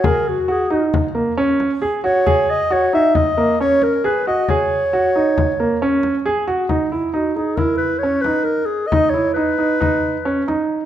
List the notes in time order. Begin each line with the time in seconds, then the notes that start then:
0.04 G#4 A#4, frame drum
0.28 F#4
0.48 F#4 G#4, frame drum
0.70 D#4
0.94 frame drum
1.15 A#3
1.37 C#4, frame drum
1.60 frame drum
1.82 G#4, frame drum
2.04 F#4 C#5
2.26 G#4, frame drum
2.50 D#5
2.70 F#4 C#5, frame drum
2.93 D#4 E5
3.15 D#5, frame drum
3.38 A#3
3.60 C#4 C#5, frame drum
3.82 A#4, frame drum
4.04 G#4 B4, frame drum
4.27 F#4 D#5
4.48 G#4 C#5, frame drum
4.93 F#4, frame drum
5.15 D#4
5.38 frame drum
5.60 A#3
5.82 C#4, frame drum
6.03 frame drum
6.26 G#4
6.47 F#4, frame drum
6.69 D#4, frame drum
6.92 E4
7.14 D#4 F#4
7.36 D#4 G#4
7.56 E4 A#4, frame drum
7.77 B4
7.99 C#5, frame drum
8.03 C#4
8.21 B4, frame drum
8.26 D#4
8.44 A#4
8.66 G#4
8.87 D#5
8.92 D#4, frame drum
9.10 C#5
9.14 E4
9.34 D#4 B4
9.58 D#4
9.80 D#4, frame drum
10.25 C#4, frame drum
10.48 D#4, frame drum